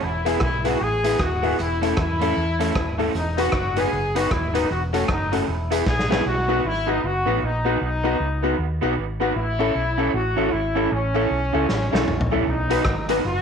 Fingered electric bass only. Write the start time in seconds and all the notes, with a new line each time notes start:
0.03 E1
0.41 B1
0.81 A1
1.20 D#1
1.59 E1
1.98 E2
2.37 E2
2.76 D#1
3.15 E1
3.53 F#1
3.92 F#1
4.31 D#1
4.70 E1
5.09 F#1
5.48 E1
5.87 A#1
6.26 B1
6.65 G#1
7.04 F#1
7.27 A1
7.43 A#1
7.81 B1
8.20 C#2
8.59 D#2
8.82 B1
8.98 G#1
9.36 A1
9.75 B1
10.14 A1
10.37 G#1
10.53 G#1
10.92 A1
11.30 B1
11.54 C#2
11.69 A1
11.93 B1
12.09 A#1
12.47 B1
12.86 G#1
13.25 F#1